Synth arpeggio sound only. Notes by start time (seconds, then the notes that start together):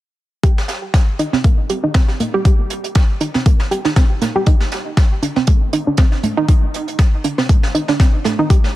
0.43 G4
1.19 D#4
1.33 C4
1.44 A#3
1.70 G4
1.84 D#4
1.95 C4
2.20 A#3
2.34 G4
2.45 G4
3.21 D#4
3.35 C4
3.46 A#3
3.71 G4
3.85 D#4
3.96 C4
4.22 A#3
4.36 G4
4.47 D#4
5.23 D4
5.37 C4
5.48 A3
5.73 D#4
5.87 D4
5.98 C4
6.23 A3
6.37 D#4
6.49 D#4
7.24 D4
7.38 C4
7.49 A3
7.75 D#4
7.89 D4
8.00 C4
8.25 A3
8.39 D#4
8.50 G4